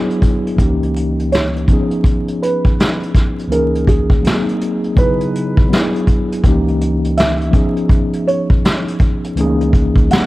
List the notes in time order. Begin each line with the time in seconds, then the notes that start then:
Already playing: F#3 B3 D4 E4 G#4
0.10 closed hi-hat
0.22 kick, closed hi-hat
0.47 closed hi-hat
0.56 C#2 E3 A#3 C#4, kick, closed hi-hat
0.60 D#4 G4
0.83 closed hi-hat
0.96 closed hi-hat
1.19 closed hi-hat
1.32 C#5, snare, closed hi-hat
1.56 closed hi-hat
1.68 F3 B3 C#4, kick, closed hi-hat
1.72 D#4 G#4
1.91 closed hi-hat
2.04 kick, closed hi-hat
2.28 closed hi-hat
2.42 B4, closed hi-hat
2.65 kick, closed hi-hat
2.80 snare, closed hi-hat
3.03 closed hi-hat
3.15 kick, snare, closed hi-hat
3.39 closed hi-hat
3.48 C#2 E3 A#3 C#4, closed hi-hat
3.52 D#4 G#4 A#4
3.75 closed hi-hat
3.87 G#4, kick, closed hi-hat
4.10 kick, closed hi-hat
4.22 F#3 A#3 C4 D#4, closed hi-hat
4.27 F#4, snare
4.34 G#4
4.49 closed hi-hat
4.61 closed hi-hat
4.84 closed hi-hat
4.95 C#3 F#3 B3 D#4 B4, kick, closed hi-hat
4.99 E4 G#4
5.20 closed hi-hat
5.35 closed hi-hat
5.57 kick, closed hi-hat
5.68 F#3 B3 D4
5.72 E4 G#4, snare, closed hi-hat
5.96 closed hi-hat
6.07 kick, closed hi-hat
6.32 closed hi-hat
6.43 C#2 E3 A#3 C#4, kick, closed hi-hat
6.47 D#4 G4
6.68 closed hi-hat
6.81 closed hi-hat
7.04 closed hi-hat
7.17 E5, snare, closed hi-hat
7.41 closed hi-hat
7.51 F3 B3 C#4 D#4, kick, closed hi-hat
7.56 G#4
7.76 closed hi-hat
7.89 kick, closed hi-hat
8.13 closed hi-hat
8.27 C#5, closed hi-hat
8.50 kick, closed hi-hat
8.65 snare, closed hi-hat
8.88 closed hi-hat
9.00 kick, closed hi-hat
9.24 closed hi-hat
9.35 C#2 E3 A3 C#4, closed hi-hat
9.40 D#4 G#4
9.44 A#3
9.61 closed hi-hat
9.73 kick, closed hi-hat
9.96 kick, closed hi-hat
10.09 F#3 A#3 C4 D#4 F#5, snare, closed hi-hat
10.14 G#4